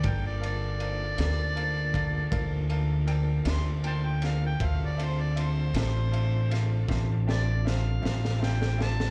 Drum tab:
RD |x-x-x-x-x-x-x-x-x-x-x-x-|x-x-x-x-x-x-------------|
SD |------o-----------o---o-|------o---o-o-o-o-oooooo|
BD |o---------o-o-----------|o-----------o-----------|